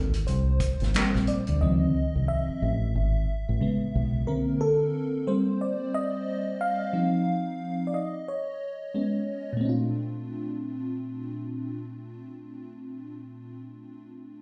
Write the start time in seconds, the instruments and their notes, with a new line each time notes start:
Already playing: fingered electric bass G#1
0.14 closed hi-hat
0.27 fingered electric bass C2, fm electric piano C5, closed hi-hat
0.60 kick, closed hi-hat
0.80 fingered electric bass G#1, snare, closed hi-hat
0.94 fm electric piano G3 A#3 C4, muted fingered electric bass stroke, snare, clap, closed hi-hat
1.14 fingered electric bass A#1, snare, closed hi-hat
1.27 fm electric piano D5, closed hi-hat
1.47 fingered electric bass D2, closed hi-hat
1.61 fingered electric bass C#2, fm electric piano D#3 F3 C4 D#5
2.16 fingered electric bass C2
2.28 fm electric piano E5
2.49 muted fingered electric bass stroke
2.62 fingered electric bass A1
2.95 fingered electric bass G#1
3.49 fingered electric bass A1
3.61 fm electric piano C#3 G#3 B3
3.95 fingered electric bass B1
4.27 fm electric piano D3 A#3 C4 A#4
4.61 fm electric piano A4
5.27 fm electric piano G3 A#3 C4 C5
5.61 fm electric piano D5
5.94 fm electric piano D#5
6.61 fm electric piano F5
6.93 fm electric piano F3 C4 D#4
7.87 fm electric piano D5
7.94 fm electric piano D#5
8.28 fm electric piano C#5
8.94 fm electric piano G#3 B3 C#4
9.53 fm electric piano A#2
9.57 fm electric piano A3 C4
9.65 fm electric piano D4 F4